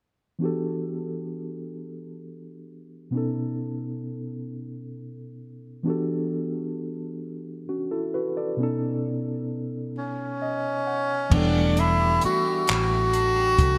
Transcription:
0.39 3.08 E3 medium
0.39 3.09 B3 soft
0.39 3.09 D4 soft
0.39 3.10 F#4 soft
0.44 3.11 G4 soft
0.44 3.11 A4 medium
3.11 5.81 B2 soft
3.11 5.81 B3 medium
3.11 5.82 C#4 soft
3.15 5.83 D#4 soft
3.15 5.84 A4 medium
5.83 8.53 E3 medium
5.83 8.54 B3 soft
5.83 7.64 D4 medium
5.83 7.65 F#4 medium
5.88 7.65 G4 soft
5.88 7.66 A4 medium
7.69 7.90 C#4 soft
7.69 7.90 F#4 medium
7.91 8.13 E4 medium
7.91 8.12 A4 medium
8.14 8.36 F#4 soft
8.14 8.35 B4 soft
8.37 8.62 A4 soft
8.37 8.80 D5 soft
8.57 11.26 B2 medium
8.57 11.27 B3 medium
8.57 11.28 C#4 medium
8.62 11.29 D#4 medium
8.62 11.29 A4 medium
9.97 11.35 C#4 medium
10.42 10.83 D#5 medium
10.87 11.29 F#5 medium
11.30 12.19 E1 loud
11.30 13.78 E3 medium
11.30 12.66 E3 medium
11.30 13.78 B3 medium
11.30 13.78 D4 medium
11.30 11.98 G4 medium
11.30 kick loud
11.30 crash medium
11.34 13.78 G3 medium
11.34 11.81 D4 medium
11.34 13.78 A4 medium
11.34 13.78 F#5 medium
11.54 12.22 A3 medium
11.77 13.12 D4 medium
11.77 12.24 E4 medium
11.77 closed hi-hat medium
12.00 12.44 G4 medium
12.21 12.90 A3 medium
12.21 12.66 F#4 medium
12.21 muted fingered electric bass stroke soft
12.21 closed hi-hat medium
12.45 12.66 G4 medium
12.67 13.56 A1 medium
12.67 13.78 E3 medium
12.67 13.78 F#4 loud
12.67 13.35 G4 medium
12.67 clap loud
12.67 closed hi-hat medium
12.91 13.58 A3 medium
13.13 13.78 D4 medium
13.13 closed hi-hat medium
13.36 13.78 G4 medium
13.58 13.78 C2 medium
13.58 13.78 A3 medium
13.58 kick medium
13.58 closed hi-hat medium

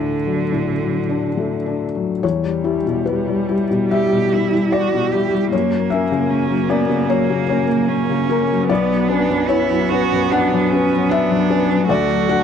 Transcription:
0.00 0.50 D2 soft
0.00 0.52 A2 soft
0.00 1.81 D3 soft
0.00 0.13 A3 soft
0.00 1.09 D4 soft
0.25 0.70 F#3 soft
0.52 0.98 A2 soft
0.81 1.27 F#3 soft
1.09 1.55 D4 soft
1.37 1.84 A3 soft
1.66 2.12 D4 soft
1.95 2.23 F#3 soft
2.23 3.88 E2 soft
2.23 5.54 G3 soft
2.23 3.02 C#5 medium
2.43 2.77 G3 soft
2.64 2.83 E4 soft
2.64 2.83 G4 soft
2.86 3.54 B2 soft
3.06 3.87 B4 soft
3.28 3.62 G3 soft
3.49 3.68 E4 soft
3.49 3.68 G4 soft
3.71 4.04 B2 soft
3.91 4.24 G3 soft
3.91 4.34 G4 soft
3.91 4.69 E5 medium
4.12 4.45 B2 soft
4.33 4.74 E4 soft
4.33 4.51 E4 soft
4.33 4.51 G4 soft
4.54 5.17 G3 soft
4.72 5.13 F#4 medium
4.72 5.48 D5 medium
4.94 5.25 B2 soft
5.11 5.31 E4 soft
5.11 5.51 G4 soft
5.11 5.32 G4 soft
5.34 5.53 G3 soft
5.52 7.06 F#2 soft
5.52 6.31 A#3 soft
5.52 8.70 A#3 soft
5.52 5.89 C#5 medium
5.73 6.04 F#3 soft
5.90 6.10 C#4 soft
5.90 6.10 A#4 soft
5.90 6.65 E5 medium
6.11 6.74 C#3 soft
6.30 6.70 C#4 medium
6.49 6.81 F#3 soft
6.68 7.11 B3 medium
6.68 6.87 C#4 soft
6.68 6.88 A#4 soft
6.68 7.07 D5 medium
6.90 7.22 C#3 soft
7.09 7.42 F#3 soft
7.09 7.90 A#3 medium
7.09 7.47 C#5 medium
7.30 7.62 C#3 soft
7.49 7.68 C#4 soft
7.49 7.68 A#4 soft
7.49 8.26 C#5 medium
7.71 8.35 F#3 soft
7.88 8.68 C#4 medium
8.10 8.42 C#3 soft
8.30 8.48 C#4 soft
8.30 8.67 A#4 medium
8.51 8.70 F#3 soft
8.69 10.28 B1 soft
8.69 9.10 B3 soft
8.69 11.86 B3 soft
8.69 9.45 D5 medium
8.90 9.21 F#3 soft
9.08 9.27 C#4 soft
9.08 9.49 D4 medium
9.08 9.27 B4 soft
9.29 9.95 F#2 soft
9.48 9.91 E4 medium
9.48 10.28 C#5 medium
9.70 10.04 F#3 soft
9.89 10.10 C#4 soft
9.89 10.33 F#4 medium
9.89 10.10 B4 soft
10.12 10.45 F#2 soft
10.31 10.65 F#3 soft
10.31 10.72 D4 medium
10.31 11.07 F#5 medium
10.53 10.84 F#2 soft
10.70 11.11 C#4 medium
10.70 10.90 C#4 soft
10.70 10.90 B4 soft
10.92 11.54 F#3 soft
11.09 11.87 D4 medium
11.09 11.86 E5 medium
11.31 11.62 F#2 soft
11.50 11.68 C#4 soft
11.50 11.68 B4 soft
11.70 11.89 F#3 soft
11.88 12.44 D2 medium
11.88 12.44 A3 medium
11.88 12.44 F#4 medium
11.88 12.26 D5 medium
12.09 12.40 F#3 soft
12.29 12.44 D4 soft
12.29 12.44 A4 soft
12.29 12.44 F#5 medium

